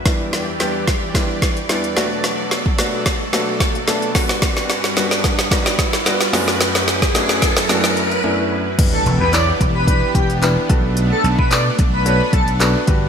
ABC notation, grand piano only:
X:1
M:4/4
L:1/16
Q:1/4=110
K:Bm
V:1 name="Grand piano"
[G,B,DE]3 z [G,B,DG]3 z [G,B,DE]3 z [G,B,DE]2 [A,B,DF]2- | [A,B,DF]2 z2 [A,B,DF]3 z [A,B,DF]3 z [A,B,DA]2 [G,B,DF]2- | [G,B,DF]2 z2 [G,B,DF]3 z [G,B,DF]3 z [G,B,DF]2 [F,,A,B,DF]2- | [F,,A,B,DF]2 z2 [F,,A,B,DF]3 z [F,,A,B,DF]3 z [F,,A,B,DE]3 z |
[B,DEGB]3 z [B,DEGc]3 z [B,DEGB]3 z [B,DEGB]2 [B,DFAB]2- | [B,DFAB]2 z2 [B,DFAB]3 z [B,DFAc]3 z [B,DFAB]2 [B,DFGB]2 |]